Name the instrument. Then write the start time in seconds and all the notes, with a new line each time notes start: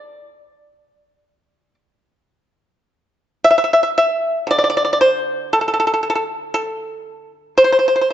pipa
Already playing: D5
3.44 E5
3.51 E5
3.58 E5
3.64 E5
3.73 E5
3.83 E5
3.98 E5
4.47 D3 D5
4.58 D5
4.64 D5
4.70 D5
4.77 D5
4.85 D5
4.93 D5
5.01 C5
5.53 A4
5.61 A4
5.68 A4
5.74 A4
5.80 A4
5.87 A4
5.94 A4
6.03 A4
6.10 A4
6.15 A4
6.54 A4
7.58 C5
7.64 C5
7.72 C5
7.79 C5
7.88 C5
7.96 C5
8.01 C5